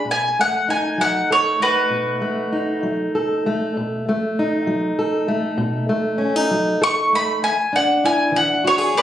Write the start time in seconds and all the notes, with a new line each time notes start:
0.05 B2
0.11 G#5
0.39 A3 F#5
0.69 D#4 G#5
0.98 F#3 F#5
1.31 A4 C#5
1.60 A3 F#4 B4
1.90 B2
2.22 A3
2.53 D#4
2.83 F#3
3.15 A4
3.46 A3
3.77 B2
4.09 A3
4.39 D#4
4.67 F#3
4.99 A4
5.28 A3
5.58 B2
5.89 A3
6.18 C#4
6.36 D#4
6.51 F#3
6.82 A4 C#6
7.13 A3 B5
7.42 E2 G#5
7.73 D4 F#5
8.04 E4 G#5
8.32 E3
8.36 F#5
8.64 F#4 C#5
8.78 G#4
8.95 D4 B4 D5